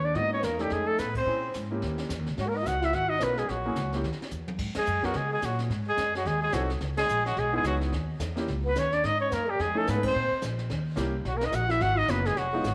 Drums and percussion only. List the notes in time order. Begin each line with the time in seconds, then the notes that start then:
0.15 brush sweep, snare
0.42 snare, hi-hat pedal
0.59 snare
0.70 brush sweep, snare
0.98 snare, hi-hat pedal
1.15 kick, ride
1.26 brush sweep
1.54 snare, hi-hat pedal
1.82 brush sweep, snare
1.98 snare
2.10 snare, hi-hat pedal
2.26 snare
2.38 brush sweep, snare
2.66 snare, hi-hat pedal
2.82 snare
2.93 brush sweep, snare
3.20 snare, hi-hat pedal
3.38 snare
3.49 brush sweep, snare
3.75 snare, hi-hat pedal
3.92 snare
4.04 brush sweep, snare
4.12 snare
4.22 snare
4.30 hi-hat pedal
4.48 high tom
4.59 brush sweep, kick, snare, crash
4.74 snare, ride
4.86 hi-hat pedal
5.03 kick, snare
5.13 brush sweep, snare
5.42 snare, hi-hat pedal
5.59 snare
5.70 brush sweep, snare
5.97 snare, hi-hat pedal
6.15 snare
6.25 brush sweep, snare
6.52 snare, hi-hat pedal
6.70 snare
6.81 brush sweep, snare
6.97 snare, ride
7.09 hi-hat pedal
7.26 snare
7.37 brush sweep, snare
7.64 snare, hi-hat pedal
7.81 snare
7.93 brush sweep, snare
8.20 snare, hi-hat pedal
8.37 snare
8.48 brush sweep, snare
8.75 snare, hi-hat pedal
8.92 snare
9.04 brush sweep, snare
9.31 snare, hi-hat pedal
9.60 brush sweep, snare
9.87 snare, hi-hat pedal
10.03 kick, ride
10.15 brush sweep
10.42 snare, hi-hat pedal
10.59 snare
10.70 brush sweep, snare
10.96 snare, hi-hat pedal
11.25 brush sweep, snare
11.41 snare
11.52 snare, hi-hat pedal
11.70 snare
11.80 brush sweep, snare
12.08 snare, hi-hat pedal
12.25 snare
12.37 brush sweep, snare
12.64 snare, hi-hat pedal